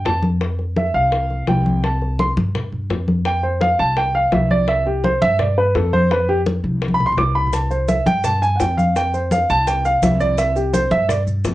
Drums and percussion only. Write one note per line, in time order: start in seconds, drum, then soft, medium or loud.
0.06 high bongo medium
0.06 low bongo medium
0.06 high conga soft
0.23 high bongo soft
0.23 high conga medium
0.41 high bongo medium
0.41 high conga soft
0.59 high bongo soft
0.59 high conga soft
0.77 high bongo medium
0.77 high conga loud
0.94 high conga soft
1.12 high bongo medium
1.12 high conga soft
1.30 high bongo soft
1.30 high conga soft
1.47 high bongo medium
1.47 low bongo medium
1.47 high conga medium
1.66 high bongo soft
1.66 high conga medium
1.84 high bongo medium
1.84 high conga soft
2.02 high bongo soft
2.02 high conga soft
2.19 high bongo medium
2.19 high conga medium
2.37 high bongo soft
2.37 high conga loud
2.55 high bongo medium
2.55 high conga soft
2.55 low conga medium
2.72 high conga soft
2.72 low conga medium
2.90 high bongo medium
2.90 low bongo medium
2.90 high conga soft
3.08 high bongo soft
3.08 high conga medium
3.25 high bongo medium
3.43 high bongo soft
3.43 high conga soft
3.61 high bongo medium
3.61 high conga loud
3.79 high conga soft
3.97 high bongo medium
3.97 high conga soft
4.14 high bongo soft
4.14 high conga soft
4.32 high bongo medium
4.32 low bongo medium
4.32 high conga medium
4.50 high bongo soft
4.50 high conga medium
4.68 high bongo medium
4.86 high bongo soft
4.86 high conga soft
5.04 high bongo medium
5.04 high conga medium
5.21 high bongo soft
5.21 high conga loud
5.39 high bongo medium
5.39 high conga soft
5.39 low conga medium
5.58 high conga soft
5.75 high bongo medium
5.75 low bongo medium
5.75 high conga soft
5.93 high bongo soft
5.93 high conga medium
6.11 high bongo medium
6.29 high bongo soft
6.29 high conga soft
6.46 high bongo medium
6.46 high conga medium
6.64 high conga medium
6.82 high bongo medium
6.88 high conga medium
7.00 high bongo soft
7.00 low conga medium
7.12 low conga loud
7.18 high bongo medium
7.18 low bongo medium
7.36 high bongo soft
7.47 low conga medium
7.53 high bongo medium
7.53 high conga soft
7.53 maracas medium
7.71 high bongo soft
7.71 high conga soft
7.71 maracas soft
7.89 high bongo medium
7.89 high conga medium
7.89 maracas medium
8.06 high bongo soft
8.06 high conga loud
8.06 maracas soft
8.24 high bongo medium
8.24 high conga soft
8.24 low conga medium
8.24 maracas medium
8.42 high conga soft
8.42 maracas soft
8.60 high bongo medium
8.60 low bongo medium
8.60 high conga soft
8.60 maracas medium
8.78 high bongo soft
8.78 high conga medium
8.78 maracas soft
8.96 high bongo medium
8.96 high conga soft
8.96 maracas medium
9.13 high bongo soft
9.13 high conga soft
9.13 maracas soft
9.31 high bongo medium
9.31 high conga loud
9.31 maracas medium
9.49 high conga soft
9.49 maracas soft
9.67 high bongo medium
9.67 high conga soft
9.67 maracas medium
9.85 high bongo soft
9.85 high conga soft
9.85 maracas soft
10.03 high bongo medium
10.03 low bongo medium
10.03 high conga medium
10.03 maracas medium
10.20 high bongo soft
10.20 high conga medium
10.20 maracas soft
10.38 high bongo medium
10.38 high conga soft
10.38 maracas medium
10.56 high bongo soft
10.56 high conga soft
10.56 maracas soft
10.74 high bongo medium
10.74 high conga medium
10.74 maracas medium
10.91 high bongo soft
10.91 high conga loud
10.91 maracas soft
11.09 high bongo medium
11.09 high conga soft
11.09 low conga medium
11.09 maracas medium
11.27 high conga soft
11.27 low conga medium
11.27 maracas soft
11.44 high bongo medium
11.44 low bongo medium
11.44 high conga soft
11.44 maracas medium